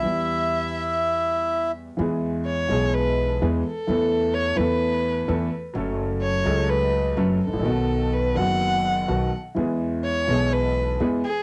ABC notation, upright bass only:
X:1
M:4/4
L:1/16
Q:1/4=126
K:Em
V:1 name="Upright bass" clef=bass
E,,12- E,,3 z | [K:E] E,,4- E,,3/2 z/2 B,,,4- B,,,3/2 z/2 E,,3/2 z2 z/2 | E,,4- E,,3/2 z/2 E,,4- E,,3/2 z/2 E,,3/2 z2 z/2 | F,,,4- F,,,3/2 z/2 C,,4- C,,3/2 z/2 F,,,3/2 z G,,,/2 A,,,/2 ^A,,,/2 |
B,,,4- B,,,3/2 z/2 F,,,4- F,,,3/2 z/2 B,,,3/2 z2 z/2 | E,,4- E,,3/2 z/2 B,,,4- B,,,3/2 z/2 E,,3/2 z2 z/2 |]